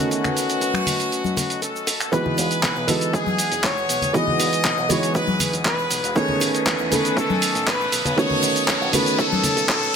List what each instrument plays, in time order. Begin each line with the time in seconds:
Already playing: grand piano D#3 A3 B3 C#4 F#4, string section A3 C#4 B4 D#5, trumpet section F#4
0.11 trumpet section F#4, closed hi-hat, shaker
0.24 finger snap, low conga, shaker
0.37 open hi-hat, shaker
0.49 closed hi-hat, shaker
0.61 closed hi-hat, high bongo, shaker
0.74 finger snap, high conga, shaker
0.86 open hi-hat, low conga, shaker
0.99 closed hi-hat, shaker
1.00 shaker
1.12 closed hi-hat, shaker
1.24 high conga, shaker
1.37 open hi-hat, high bongo, low conga, shaker
1.50 closed hi-hat, shaker
1.62 trumpet section A4, closed hi-hat, high bongo, shaker
1.76 shaker
1.87 open hi-hat, high bongo, shaker
2.00 finger snap, closed hi-hat, shaker
2.12 grand piano E3 G#3 B3 D#4 F#4, string section G#4 F#5 D#6, trumpet section B4, kick, closed hi-hat, riser, shaker
2.26 low conga
2.37 fingered electric bass E1, open hi-hat, shaker
2.51 closed hi-hat, shaker
2.63 fingered electric bass B1, kick, clap, closed hi-hat, shaker
2.76 fingered electric bass B1, shaker
2.87 grand piano E3 G#3 B3 D#4 F#4, trumpet section A4, open hi-hat, low conga, shaker
3.01 closed hi-hat, shaker
3.13 trumpet section G#4, kick, closed hi-hat, shaker
3.26 high conga, shaker
3.38 open hi-hat, shaker
3.52 fingered electric bass E1, closed hi-hat, shaker
3.63 trumpet section C#5, kick, clap, open hi-hat, shaker
3.77 shaker
3.89 fingered electric bass B1, open hi-hat, shaker
4.01 fingered electric bass E1, closed hi-hat, low conga, shaker
4.13 grand piano E3 G#3 B3 D#4 F#4, trumpet section D#5, kick, closed hi-hat, shaker
4.27 low conga
4.39 fingered electric bass E1, open hi-hat, shaker
4.52 muted fingered electric bass stroke, closed hi-hat, shaker
4.64 fingered electric bass B1, kick, clap, closed hi-hat, shaker
4.65 shaker
4.77 fingered electric bass B1, shaker
4.89 grand piano E3 G#3 B3 D#4 F#4, trumpet section C#5, open hi-hat, low conga, shaker
5.03 closed hi-hat, shaker
5.14 trumpet section B4, kick, closed hi-hat, shaker
5.27 high conga, shaker
5.39 open hi-hat, low conga, shaker
5.53 fingered electric bass E1, closed hi-hat, shaker
5.65 trumpet section B4, kick, clap, closed hi-hat, shaker
5.78 shaker
5.90 fingered electric bass B1, open hi-hat, shaker
6.03 fingered electric bass E1, closed hi-hat, shaker
6.15 grand piano D#3 A3 B3, string section B4 C#6 D#6, kick, closed hi-hat, shaker
6.17 grand piano C#4 G#4, trumpet section C#5, string section G#5, shaker
6.28 low conga
6.40 fingered electric bass A1, open hi-hat, shaker
6.42 shaker
6.54 closed hi-hat, shaker
6.66 fingered electric bass E2, kick, clap, closed hi-hat, shaker
6.79 fingered electric bass E2, shaker
6.90 grand piano D#3 A3 B3 C#4 A4, trumpet section B4, open hi-hat, low conga, shaker
7.05 closed hi-hat, shaker
7.17 trumpet section A4, kick, closed hi-hat, shaker
7.30 high conga, shaker
7.42 open hi-hat, shaker
7.55 fingered electric bass A1, closed hi-hat, shaker
7.67 trumpet section B4, kick, clap, open hi-hat, shaker
7.81 shaker
7.92 fingered electric bass B1, string section C#5 A5, open hi-hat, shaker
8.05 fingered electric bass B1, closed hi-hat, low conga, shaker
8.16 grand piano D#3 A3 B3 C#4 F#4, trumpet section C#5, kick, closed hi-hat, shaker
8.30 low conga
8.42 fingered electric bass B1, open hi-hat, shaker
8.56 closed hi-hat, shaker
8.68 fingered electric bass F#1, kick, clap, shaker
8.81 fingered electric bass F#1, shaker
8.92 grand piano D#3 A3 B3 C#4 F#4, trumpet section B4, open hi-hat, low conga, shaker
9.06 closed hi-hat, shaker
9.19 trumpet section A4, kick, closed hi-hat, shaker
9.32 high conga, shaker
9.43 open hi-hat, low conga, shaker
9.56 fingered electric bass B1, closed hi-hat, shaker
9.69 trumpet section A4, kick, clap, closed hi-hat, shaker
9.83 shaker